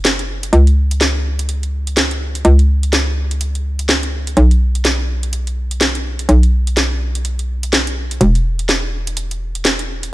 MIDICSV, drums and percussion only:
0, 0, Header, 1, 2, 480
1, 0, Start_track
1, 0, Tempo, 480000
1, 528, Time_signature, 4, 2, 24, 8
1, 10135, End_track
2, 0, Start_track
2, 0, Title_t, "Drums"
2, 48, Note_on_c, 9, 42, 62
2, 49, Note_on_c, 9, 38, 114
2, 148, Note_off_c, 9, 42, 0
2, 149, Note_off_c, 9, 38, 0
2, 192, Note_on_c, 9, 42, 35
2, 292, Note_off_c, 9, 42, 0
2, 432, Note_on_c, 9, 42, 50
2, 529, Note_off_c, 9, 42, 0
2, 529, Note_on_c, 9, 42, 61
2, 629, Note_off_c, 9, 42, 0
2, 672, Note_on_c, 9, 42, 33
2, 772, Note_off_c, 9, 42, 0
2, 912, Note_on_c, 9, 42, 48
2, 1008, Note_off_c, 9, 42, 0
2, 1008, Note_on_c, 9, 42, 57
2, 1009, Note_on_c, 9, 38, 114
2, 1108, Note_off_c, 9, 42, 0
2, 1109, Note_off_c, 9, 38, 0
2, 1392, Note_on_c, 9, 42, 48
2, 1488, Note_off_c, 9, 42, 0
2, 1488, Note_on_c, 9, 42, 58
2, 1588, Note_off_c, 9, 42, 0
2, 1632, Note_on_c, 9, 42, 32
2, 1732, Note_off_c, 9, 42, 0
2, 1872, Note_on_c, 9, 42, 48
2, 1968, Note_off_c, 9, 42, 0
2, 1968, Note_on_c, 9, 42, 61
2, 1969, Note_on_c, 9, 38, 115
2, 2068, Note_off_c, 9, 42, 0
2, 2069, Note_off_c, 9, 38, 0
2, 2112, Note_on_c, 9, 42, 32
2, 2212, Note_off_c, 9, 42, 0
2, 2352, Note_on_c, 9, 42, 48
2, 2448, Note_off_c, 9, 42, 0
2, 2448, Note_on_c, 9, 42, 58
2, 2548, Note_off_c, 9, 42, 0
2, 2591, Note_on_c, 9, 42, 32
2, 2691, Note_off_c, 9, 42, 0
2, 2832, Note_on_c, 9, 42, 47
2, 2928, Note_off_c, 9, 42, 0
2, 2928, Note_on_c, 9, 42, 56
2, 2929, Note_on_c, 9, 38, 106
2, 3028, Note_off_c, 9, 42, 0
2, 3029, Note_off_c, 9, 38, 0
2, 3312, Note_on_c, 9, 42, 46
2, 3408, Note_off_c, 9, 42, 0
2, 3408, Note_on_c, 9, 42, 60
2, 3508, Note_off_c, 9, 42, 0
2, 3552, Note_on_c, 9, 42, 33
2, 3652, Note_off_c, 9, 42, 0
2, 3792, Note_on_c, 9, 42, 45
2, 3888, Note_off_c, 9, 42, 0
2, 3888, Note_on_c, 9, 42, 58
2, 3889, Note_on_c, 9, 38, 112
2, 3988, Note_off_c, 9, 42, 0
2, 3989, Note_off_c, 9, 38, 0
2, 4032, Note_on_c, 9, 42, 32
2, 4132, Note_off_c, 9, 42, 0
2, 4272, Note_on_c, 9, 42, 45
2, 4368, Note_off_c, 9, 42, 0
2, 4368, Note_on_c, 9, 42, 58
2, 4468, Note_off_c, 9, 42, 0
2, 4512, Note_on_c, 9, 42, 33
2, 4612, Note_off_c, 9, 42, 0
2, 4752, Note_on_c, 9, 42, 47
2, 4848, Note_off_c, 9, 42, 0
2, 4848, Note_on_c, 9, 42, 58
2, 4849, Note_on_c, 9, 38, 104
2, 4948, Note_off_c, 9, 42, 0
2, 4949, Note_off_c, 9, 38, 0
2, 5232, Note_on_c, 9, 42, 46
2, 5328, Note_off_c, 9, 42, 0
2, 5328, Note_on_c, 9, 42, 59
2, 5428, Note_off_c, 9, 42, 0
2, 5472, Note_on_c, 9, 42, 33
2, 5572, Note_off_c, 9, 42, 0
2, 5712, Note_on_c, 9, 42, 49
2, 5808, Note_off_c, 9, 42, 0
2, 5808, Note_on_c, 9, 38, 108
2, 5808, Note_on_c, 9, 42, 58
2, 5908, Note_off_c, 9, 38, 0
2, 5908, Note_off_c, 9, 42, 0
2, 5952, Note_on_c, 9, 42, 32
2, 6052, Note_off_c, 9, 42, 0
2, 6192, Note_on_c, 9, 42, 48
2, 6289, Note_off_c, 9, 42, 0
2, 6289, Note_on_c, 9, 42, 62
2, 6389, Note_off_c, 9, 42, 0
2, 6432, Note_on_c, 9, 42, 34
2, 6532, Note_off_c, 9, 42, 0
2, 6672, Note_on_c, 9, 42, 49
2, 6769, Note_off_c, 9, 42, 0
2, 6769, Note_on_c, 9, 38, 102
2, 6769, Note_on_c, 9, 42, 60
2, 6869, Note_off_c, 9, 38, 0
2, 6869, Note_off_c, 9, 42, 0
2, 7152, Note_on_c, 9, 42, 50
2, 7248, Note_off_c, 9, 42, 0
2, 7248, Note_on_c, 9, 42, 60
2, 7348, Note_off_c, 9, 42, 0
2, 7392, Note_on_c, 9, 42, 34
2, 7492, Note_off_c, 9, 42, 0
2, 7632, Note_on_c, 9, 42, 49
2, 7729, Note_off_c, 9, 42, 0
2, 7729, Note_on_c, 9, 38, 109
2, 7729, Note_on_c, 9, 42, 60
2, 7829, Note_off_c, 9, 38, 0
2, 7829, Note_off_c, 9, 42, 0
2, 7872, Note_on_c, 9, 42, 34
2, 7972, Note_off_c, 9, 42, 0
2, 8112, Note_on_c, 9, 42, 49
2, 8208, Note_off_c, 9, 42, 0
2, 8208, Note_on_c, 9, 42, 63
2, 8308, Note_off_c, 9, 42, 0
2, 8352, Note_on_c, 9, 42, 36
2, 8452, Note_off_c, 9, 42, 0
2, 8592, Note_on_c, 9, 42, 50
2, 8689, Note_off_c, 9, 42, 0
2, 8689, Note_on_c, 9, 38, 103
2, 8689, Note_on_c, 9, 42, 62
2, 8789, Note_off_c, 9, 38, 0
2, 8789, Note_off_c, 9, 42, 0
2, 9072, Note_on_c, 9, 42, 51
2, 9168, Note_off_c, 9, 42, 0
2, 9168, Note_on_c, 9, 42, 64
2, 9268, Note_off_c, 9, 42, 0
2, 9312, Note_on_c, 9, 42, 34
2, 9412, Note_off_c, 9, 42, 0
2, 9552, Note_on_c, 9, 42, 52
2, 9649, Note_off_c, 9, 42, 0
2, 9649, Note_on_c, 9, 42, 62
2, 9650, Note_on_c, 9, 38, 108
2, 9749, Note_off_c, 9, 42, 0
2, 9750, Note_off_c, 9, 38, 0
2, 9792, Note_on_c, 9, 42, 36
2, 9892, Note_off_c, 9, 42, 0
2, 10032, Note_on_c, 9, 42, 51
2, 10132, Note_off_c, 9, 42, 0
2, 10135, End_track
0, 0, End_of_file